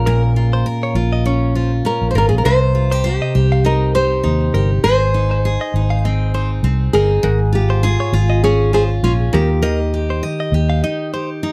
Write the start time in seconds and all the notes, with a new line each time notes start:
Already playing: A#1 C#4 F4 A#4
0.06 A#2 A#4
0.36 F4
0.53 C5
0.66 A#4
0.83 C#5
0.95 A#1 F4
1.13 D#5
1.26 C#4 C#5
1.55 F4 C5
1.85 C#4 A#4
2.02 A#1
2.11 C5
2.15 G#1 F4 A#4
2.29 A#1 G#4
2.38 A#4
2.45 C2 C3 A#4 C5
2.75 F4
2.91 G4 C5
3.04 G4 C5
3.22 D#5
3.35 C2 G4
3.52 F5
3.65 D#4 A#4 D#5
3.95 G4 C5
4.23 D#2 D#4
4.54 G1 G4 A#4
4.84 G#1 G#4 A#4 C5
5.14 D#4
5.31 C5
5.45 G#4
5.61 D#5
5.74 G#1 D#4
5.90 F5
6.05 C4 D#5
6.34 D#4 C5
6.63 C2 C4
6.93 G1 D#4 G#4 A#4
7.23 G#1 G#2 A#4
7.53 F4 G4
7.70 C5
7.83 F4 G#4
8.00 C#5
8.13 G#1 F4
8.30 D#5
8.44 C#4 G#4 C#5
8.73 F4 G#4 C5
9.03 A#1 C#4 F4
9.33 D#2 D#3 G4 A#4
9.62 D#3 A#4 D#5
9.94 G4
10.10 C5
10.23 D#5
10.40 D#5
10.52 D#2 G4
10.70 F5
10.84 D#4 D#5
11.14 G4 C5
11.43 D#4